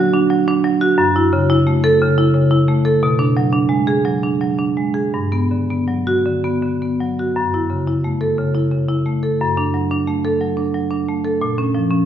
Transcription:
Already playing: F#3
0.14 D4
0.30 F#3
0.48 D4
0.64 F#3
0.81 F#4
0.98 F#2
1.16 E4
1.33 C#3
1.50 E4
1.67 A3
1.84 A4
2.02 C#3
2.18 E4
2.35 C#3
2.51 E4
2.68 A3
2.85 A4
3.03 B2
3.19 D4
3.37 F#3
3.53 D4
3.69 G#3
3.87 G#4
4.05 F#3
4.23 D4
4.41 F#3
4.59 D4
4.77 G#3
4.94 G#4
5.14 G2
5.32 B3
5.51 D3
5.70 B3
5.88 F#3
6.07 F#4
6.26 D3
6.44 B3
6.63 D3
6.82 B3
7.01 F#3
7.19 F#4
7.36 F#2
7.54 E4
7.70 C#3
7.87 E4
8.04 A3
8.21 A4
8.38 C#3
8.55 E4
8.71 C#3
8.89 E4
9.06 A3
9.23 A4
9.41 F#2
9.57 D4
9.74 F#3
9.91 D4
10.08 A3
10.25 A4
10.41 F#3
10.57 D4
10.74 F#3
10.91 D4
11.08 A3
11.25 A4
11.41 A#2
11.58 C#4
11.75 F3
11.91 C#4

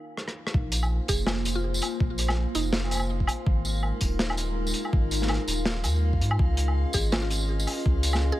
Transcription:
Already playing: D#4 A#4 F5
0.17 cross-stick
0.28 cross-stick
0.47 cross-stick
0.54 A#1 A#3 F4 C5, kick
0.72 closed hi-hat, tambourine
0.83 low woodblock
1.08 F1 G#4, kick, closed hi-hat, tambourine
1.27 snare, low woodblock
1.45 closed hi-hat, tambourine
1.55 F4
1.74 tambourine
1.82 closed hi-hat, low woodblock
2.00 A#1, kick
2.18 closed hi-hat, tambourine
2.28 snare, low woodblock
2.55 F1 D#4, closed hi-hat, tambourine
2.73 snare
2.84 low woodblock
2.86 low woodblock
2.88 low woodblock
2.90 closed hi-hat, tambourine, low woodblock
2.92 low woodblock
2.95 low woodblock
2.97 low woodblock
3.00 low woodblock
3.20 kick
3.27 closed hi-hat, low woodblock
3.46 G#1 G#3 D#4 A#4, kick
3.65 tambourine
3.83 low woodblock
4.01 D#1, kick, closed hi-hat, tambourine
4.19 snare
4.30 low woodblock
4.37 closed hi-hat, tambourine
4.67 tambourine
4.74 closed hi-hat
4.85 low woodblock
4.93 G#1, kick
5.11 closed hi-hat, tambourine
5.14 tambourine
5.17 tambourine
5.19 snare, tambourine
5.27 snare, low woodblock
5.33 snare
5.48 D#1, closed hi-hat, tambourine
5.66 snare
5.84 D#2, closed hi-hat, tambourine, low woodblock
6.13 kick
6.20 G#2, closed hi-hat
6.31 low woodblock
6.38 C#2 C#4 G#4 D#5, kick
6.57 closed hi-hat
6.68 low woodblock
6.93 G#1 G#4, kick, closed hi-hat, tambourine
7.12 F4, snare, low woodblock
7.22 F4
7.30 closed hi-hat, tambourine
7.60 tambourine
7.67 closed hi-hat, low woodblock
7.71 closed hi-hat
7.73 closed hi-hat
7.78 closed hi-hat
7.79 closed hi-hat
7.83 C#2, kick, closed hi-hat
8.03 closed hi-hat, tambourine
8.13 snare, low woodblock
8.32 G#4

